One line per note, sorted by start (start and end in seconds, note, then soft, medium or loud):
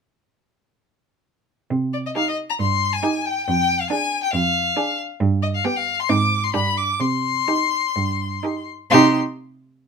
1.71 2.06 C3 soft
1.93 1.98 D5 soft
2.06 2.10 D#5 soft
2.15 2.49 D#4 soft
2.15 2.48 G4 soft
2.15 2.27 F5 medium
2.29 2.37 D#5 soft
2.50 2.54 A#5 medium
2.60 2.94 G2 medium
2.60 2.95 C6 medium
2.93 3.27 G#5 medium
3.03 3.36 D#4 soft
3.03 3.36 G4 soft
3.25 3.45 G5 medium
3.46 3.82 F2 medium
3.46 3.82 G5 medium
3.80 3.89 F5 medium
3.90 4.22 D4 soft
3.90 4.22 G#4 soft
3.90 4.22 G#5 medium
4.23 4.32 G5 medium
4.33 4.67 F2 medium
4.33 4.97 F5 medium
4.76 5.09 D4 medium
4.76 5.09 G#4 medium
5.21 5.56 G2 medium
5.42 5.47 D#5 medium
5.55 5.66 F5 medium
5.64 5.98 B3 soft
5.64 5.98 G4 soft
5.64 5.78 G5 medium
5.77 6.01 F5 medium
6.00 6.11 C6 medium
6.09 6.45 G#2 medium
6.09 6.43 C4 soft
6.09 6.43 D#4 soft
6.09 6.45 D6 medium
6.44 6.53 C6 medium
6.53 6.91 G2 soft
6.53 6.88 D4 soft
6.53 6.88 G4 soft
6.53 6.79 B5 medium
6.77 7.02 D6 medium
7.00 7.38 C3 soft
7.00 8.67 C6 medium
7.48 7.83 D#4 soft
7.48 7.83 G4 soft
7.96 8.33 G2 soft
8.43 8.78 D#4 soft
8.43 8.79 G4 soft
8.90 9.16 C3 medium
8.90 9.16 D#4 medium
8.90 9.16 G4 medium
8.90 9.16 C6 medium